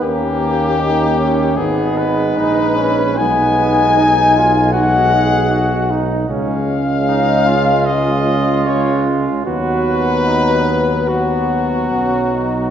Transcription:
X:1
M:4/4
L:1/8
Q:1/4=76
K:G#m
V:1 name="Cornet"
=G4 ^G B3 | [K:Blyd] g4 f3 z | e4 d2 c z | B4 F4 |]
V:2 name="Flugelhorn"
A,2 D C B,2 D C | [K:Blyd] B,2 D E F G F D | C z D E4- E | F2 D B,3 C D |]
V:3 name="Euphonium"
C4 D4 | [K:Blyd] D4 D3 z | C6 C2 | B,4 B,4 |]
V:4 name="Trombone" clef=bass
A,4 G,4 | [K:Blyd] G,4 G,3 z | G,6 G,2 | F,4 F,4 |]
V:5 name="Tuba" clef=bass
D,,4 G,,,2 A,,,2 | [K:Blyd] B,,,8 | C,,8 | D,,6 B,,,2 |]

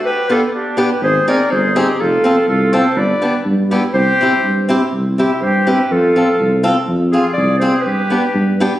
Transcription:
X:1
M:2/4
L:1/8
Q:1/4=123
K:C
V:1 name="Clarinet"
B A G B | c d c G | A2 A c | d2 z G |
c3 z | z G c B | A3 z | z _A d c |
B3 z |]
V:2 name="Trumpet"
G F D G | _A _B A _E | F2 F A | B2 z E |
G3 z | z E G G | F3 z | z F _A A |
G3 z |]
V:3 name="Steel-string acoustic guitar"
z [B,DG] z [B,DG] | z [C_E_A] z [CEA] | z [CFA] z [CFA] | z [B,DG] z [B,DG] |
z [CEG] z [CEG] | z [CEG] z [CEG] | z [CFA] z [CFA] | z [CF_A] z [CFA] |
z [B,DG] z [B,DG] |]
V:4 name="Tuba" clef=bass
z4 | _A,,, z G,,,2 | F,,, z C,,2 | G,,, z G,,2 |
C,, z G,,2 | C,,2 G,,2 | F,,2 C,,2 | F,,2 C,,2 |
G,,2 G,,2 |]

